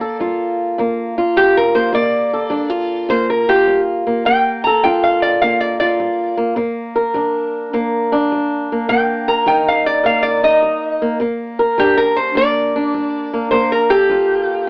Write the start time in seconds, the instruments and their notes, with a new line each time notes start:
Already playing: steel-string acoustic guitar G2 A#3, resonator guitar played with a steel bar D5
0.01 steel-string acoustic guitar A4
0.20 steel-string acoustic guitar G3 F4
0.78 steel-string acoustic guitar D3 A#3
1.18 steel-string acoustic guitar F4
1.36 steel-string acoustic guitar G3, resonator guitar played with a steel bar G4
1.57 resonator guitar played with a steel bar A#4
1.75 steel-string acoustic guitar A#3, resonator guitar played with a steel bar C5
1.92 steel-string acoustic guitar G2 A#3, resonator guitar played with a steel bar D5
2.33 steel-string acoustic guitar A4
2.50 steel-string acoustic guitar G3 D4
2.70 steel-string acoustic guitar F4
3.09 steel-string acoustic guitar D3 A#3, resonator guitar played with a steel bar C5
3.30 resonator guitar played with a steel bar A#4
3.49 steel-string acoustic guitar F4, resonator guitar played with a steel bar G4
3.67 steel-string acoustic guitar G3
4.07 steel-string acoustic guitar A#3
4.25 steel-string acoustic guitar G2 A#3, resonator guitar played with a steel bar G5
4.64 steel-string acoustic guitar A4, resonator guitar played with a steel bar A#5
4.84 steel-string acoustic guitar G3 F4, resonator guitar played with a steel bar G5
5.03 resonator guitar played with a steel bar F5
5.22 resonator guitar played with a steel bar D5
5.41 steel-string acoustic guitar D3 A#3, resonator guitar played with a steel bar F5
5.61 resonator guitar played with a steel bar D5
5.80 steel-string acoustic guitar F4, resonator guitar played with a steel bar D5
6.00 steel-string acoustic guitar G3
6.37 steel-string acoustic guitar A#3
6.56 steel-string acoustic guitar C3 A#3
6.96 steel-string acoustic guitar A#4
7.14 steel-string acoustic guitar G3 D4
7.73 steel-string acoustic guitar G2 A#3
8.12 steel-string acoustic guitar D4
8.32 steel-string acoustic guitar G3
8.72 steel-string acoustic guitar A#3
8.89 steel-string acoustic guitar C3 A#3, resonator guitar played with a steel bar G5
9.28 steel-string acoustic guitar A#4, resonator guitar played with a steel bar A#5
9.46 steel-string acoustic guitar G3 D#4, resonator guitar played with a steel bar G5
9.69 resonator guitar played with a steel bar F5
9.86 resonator guitar played with a steel bar D5
10.04 steel-string acoustic guitar G2 A#3, resonator guitar played with a steel bar F5
10.23 resonator guitar played with a steel bar D5
10.43 steel-string acoustic guitar D#4, resonator guitar played with a steel bar D#5
10.62 steel-string acoustic guitar G3
11.02 steel-string acoustic guitar A#3
11.20 steel-string acoustic guitar C3 A#3
11.59 steel-string acoustic guitar A#4
11.78 steel-string acoustic guitar G3 D4, resonator guitar played with a steel bar G4
11.98 resonator guitar played with a steel bar A#4
12.17 resonator guitar played with a steel bar C5
12.35 steel-string acoustic guitar G2 A#3, resonator guitar played with a steel bar D5
12.76 steel-string acoustic guitar D4
12.94 steel-string acoustic guitar G3
13.33 steel-string acoustic guitar A#3
13.51 steel-string acoustic guitar G2 A#3, resonator guitar played with a steel bar C5
13.72 resonator guitar played with a steel bar A#4
13.90 resonator guitar played with a steel bar G4, steel-string acoustic guitar A4
14.09 steel-string acoustic guitar G3 F4